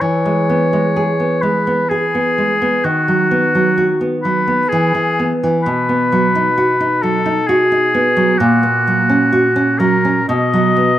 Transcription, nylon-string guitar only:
0.01 E3
0.26 G#3
0.49 B3
0.73 G#3
0.96 G#4
1.20 B3
1.43 G#3
1.67 B3
1.91 G#4
2.15 B3
2.38 G#3
2.62 B3
2.84 D#3
3.08 F#3
3.31 B3
3.55 F#3
3.78 F#4
4.01 B3
4.25 F#3
4.48 B3
4.72 E3
4.95 E3
5.19 B3
5.43 E3
5.66 B2
5.89 B3
6.12 F#3
6.35 D#4
6.58 F#4
6.80 D#4
7.03 F#3
7.26 D#4
7.49 F#4
7.72 D#4
7.94 B3
8.17 F#3
8.40 A#2
8.63 A#3
8.87 F#3
9.10 C#4
9.32 F#4
9.56 C#4
9.80 F#3
10.05 C#4
10.29 B2
10.53 F#3
10.77 B3

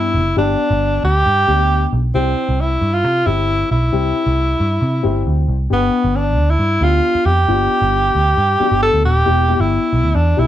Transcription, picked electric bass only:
Already playing: G2
0.14 F#1
0.37 G1
0.71 G1
1.04 D2
1.26 G2
1.48 D2
1.93 B1
2.15 C2
2.49 C2
2.81 G2
3.04 C3
3.27 G1
3.71 B1
3.93 C2
4.27 C2
4.60 G2
4.82 C3
5.05 G1
5.27 D2
5.48 C2
5.71 G1
6.04 G1
6.38 D2
6.59 G2
6.81 D2
7.15 muted picked electric bass stroke
7.26 F2
7.48 G1
7.82 G1
8.15 D2
8.37 G2
8.60 muted picked electric bass stroke
8.72 G1
8.93 D2
9.04 D#1
9.27 E1
9.60 G1
9.93 B1
10.04 D2
10.15 E2
10.38 B1

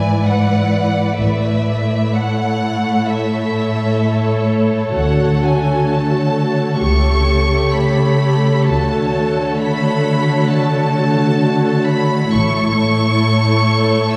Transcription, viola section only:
Already playing: E3 E4
1.18 A3 E4
4.96 F#4
6.80 A3 G4
8.69 F#4
12.31 A3 E4

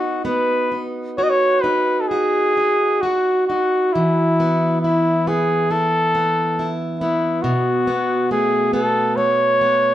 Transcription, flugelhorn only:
Already playing: F#4
0.25 B4
1.18 C#5
1.23 D#5
1.30 C#5
1.62 B4
2.01 A4
2.08 G#4
3.01 F#4
3.47 F#4
3.93 E4
4.81 E4
5.28 G#4
5.71 A4
7.00 E4
7.42 F#4
8.31 G#4
8.73 A4
9.16 C#5

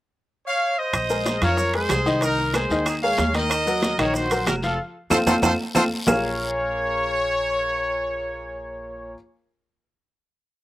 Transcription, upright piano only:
1.10 G#3 G#4 A#4
1.42 F3 F4 F5
1.74 G#3 G#4 A#4
2.06 D#3 D#4 D#5
2.22 D#3 D#4 D#5
2.55 G#3 G#4 A#4
2.71 D#3 D#4 D#5
3.03 G#3 G#4 A#4
3.35 D#3 D#4 D#5
3.67 F#3 F#4 A#4
3.99 D#3 D#4 D#5
4.31 F#3 F#4 A#4
4.63 F3 F4 F5
5.11 C4 F4 A4
5.27 C4 F4 A4
5.42 C4 F4 A4
5.75 C4 F4 A4
6.07 A#3 F4 G#4 A#4 C#5 F5

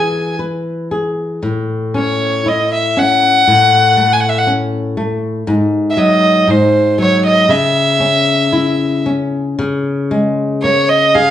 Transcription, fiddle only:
Already playing: G#5
1.96 C#5
2.48 D#5
2.73 E5
2.99 F#5
4.13 G#5
4.20 F#5
4.29 E5
4.38 F#5
5.90 E5
5.98 D#5
6.50 C5
6.99 C#5
7.25 D#5
7.50 E5
10.62 C#5
10.89 D#5
11.15 F5

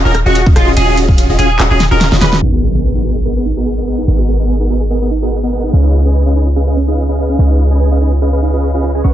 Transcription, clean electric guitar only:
0.05 A#4
0.26 F#4
0.56 F4
0.77 G#4
1.39 G#4
1.71 G#4
1.91 A#4
2.21 B4
9.04 C#5

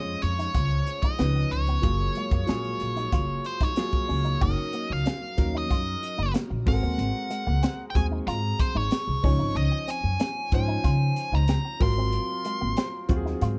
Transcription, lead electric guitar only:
Already playing: D#5
0.22 C#5
1.02 D#5
1.51 C#5
3.46 C5
3.63 C#5
4.42 D#5
4.93 F5
5.58 D#5
6.68 F#5
7.90 G5
7.96 G#5
8.28 A#5
8.60 C5
8.77 C#5
9.57 D#5
9.90 G#5
10.55 G#5
11.35 A#5
11.83 C6

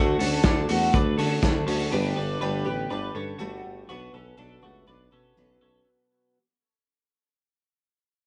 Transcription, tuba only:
Already playing: D2
0.20 D2
0.44 D2
0.69 E2
0.94 D2
1.19 D3
1.43 D2
1.67 D2
1.92 G1
2.17 G1
2.41 G1
2.66 A1
2.90 G1
3.15 G2
3.40 G1
3.64 G1
3.88 B1
4.13 B1
4.38 B1
4.63 C#2
4.88 B1
5.12 B2
5.37 B1
5.61 B1

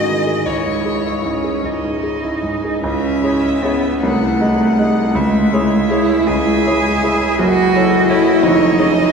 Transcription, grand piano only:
Already playing: G#2 D#3 F#4 G#4
0.07 D#3
0.27 G#4
0.46 C#2
0.66 G#2
0.85 G#4
1.05 E4
1.24 G#2
1.44 G#4
1.64 C#2
1.83 G#2
2.03 G#4
2.23 E4
2.43 G#2
2.64 G#4
2.83 C#2 C#3
3.23 E4 G#4 C#5
3.64 E4 G#4 C#5
4.03 C2 C3
4.41 D#4 G#4 D#5
4.79 D#4 G#4 D#5
5.15 C#2 C#3
5.53 E4 G#4 C#5
5.90 E4 G#4 C#5
6.29 C#2 C#3
6.67 E4 G#4 C#5
7.03 E4 G#4 C#5
7.39 F#1 F#2
7.75 E4 A4 C#5
8.10 E4 A4 C#5
8.43 F1 F2
8.79 C#4 G#4 C#5

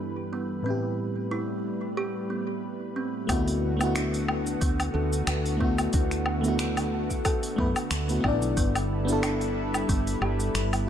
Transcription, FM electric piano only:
Already playing: G2 B3 D4 E4 A4
0.63 A2 B4
0.68 E4 G4
3.27 A3 B3 E4
3.31 F#4
3.77 A3 B3
3.82 E4 F#4
5.57 A3 B3
5.62 E4 F#4
6.41 A3 B3
6.46 E4 F#4
7.56 A3 B3 E4 B4
8.08 A3 B3 E4
8.12 F#4
8.21 B3 D4
8.26 E4 D5
9.05 B3 D4
9.10 E4 A4

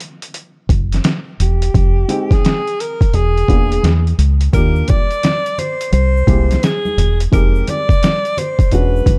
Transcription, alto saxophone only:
1.42 G4
2.34 G#4
2.81 A#4
3.15 G#4
4.54 A#4
4.89 D5
5.59 C5
5.94 C5
6.64 G#4
7.34 A#4
7.69 D5
8.39 C5
8.74 B4

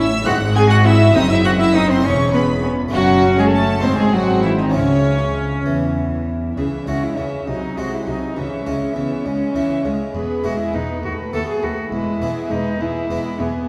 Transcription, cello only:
0.26 F#4
0.55 G#4
0.70 F#4
0.86 E4
1.15 D#4
1.30 E4
1.45 F#4
1.59 E4
1.75 D#4
1.90 C4
2.05 C#4
2.34 B3
2.93 F#3
3.38 G#3
3.53 A3
3.83 C4
3.99 G#3
4.13 F#3
4.44 E3
4.59 D#3
4.75 C#3
6.57 G#4
6.87 F#4
7.03 E4
7.17 C#4
7.48 D#4
7.78 F#4
7.93 E4
8.08 D#4
8.38 C#4
8.97 B3
9.26 C#4
9.85 G#3
10.15 G#4
10.45 F#4
10.60 E4
10.74 D#4
11.04 F#4
11.33 A4
11.49 G#4
11.63 F#4
11.93 E4
12.51 D#4
12.81 E4
13.40 B3

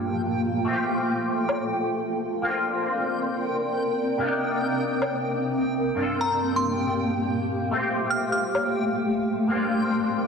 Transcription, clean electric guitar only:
Already playing: G2 A#3 D4 A4
0.65 A3 C4
0.70 F4 G4
2.42 A#3 C4
2.47 D4 F4
4.18 C3 A#3
4.22 D4 D#4 G4
5.95 G2 A#3
5.99 D4 F4 A4
7.71 A3 C4
7.77 F4 G4
9.48 A#3 C4
9.53 D4 F4

